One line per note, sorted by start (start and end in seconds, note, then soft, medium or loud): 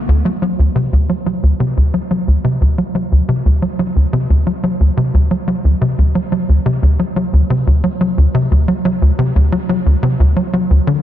0.08 0.23 D2 medium
0.25 0.31 F#3 medium
0.42 0.52 F#3 medium
0.59 0.69 D2 medium
0.75 0.91 C3 loud
0.93 1.07 D2 medium
1.09 1.15 F#3 medium
1.26 1.36 F#3 medium
1.43 1.53 D2 medium
1.60 1.75 C3 loud
1.77 1.92 D2 medium
1.94 2.00 F#3 medium
2.11 2.21 F#3 medium
2.28 2.37 D2 medium
2.44 2.59 C3 loud
2.61 2.76 D2 medium
2.78 2.84 F#3 medium
2.95 3.05 F#3 medium
3.12 3.22 D2 medium
3.29 3.43 C3 loud
3.46 3.60 D2 medium
3.62 3.68 F#3 medium
3.79 3.89 F#3 medium
3.96 4.06 D2 medium
4.13 4.28 C3 loud
4.30 4.45 D2 medium
4.47 4.53 F#3 medium
4.63 4.73 F#3 medium
4.80 4.90 D2 medium
4.97 5.12 C3 loud
5.14 5.29 D2 medium
5.31 5.37 F#3 medium
5.48 5.58 F#3 medium
5.64 5.74 D2 medium
5.81 5.96 C3 loud
5.98 6.13 D2 medium
6.15 6.21 F#3 medium
6.32 6.42 F#3 medium
6.49 6.59 D2 medium
6.66 6.81 C3 loud
6.82 6.97 D2 medium
6.99 7.05 F#3 medium
7.16 7.26 F#3 medium
7.33 7.43 D2 medium
7.50 7.65 C3 loud
7.67 7.82 D2 medium
7.84 7.90 F#3 medium
8.01 8.11 F#3 medium
8.18 8.27 D2 medium
8.34 8.49 C3 loud
8.51 8.66 D2 medium
8.68 8.74 F#3 medium
8.85 8.95 F#3 medium
9.02 9.12 D2 medium
9.19 9.33 C3 loud
9.36 9.50 D2 medium
9.52 9.58 F#3 medium
9.69 9.79 F#3 medium
9.86 9.96 D2 medium
10.03 10.18 C3 loud
10.20 10.35 D2 medium
10.36 10.42 F#3 medium
10.53 10.63 F#3 medium
10.70 10.80 D2 medium
10.87 11.02 D3 loud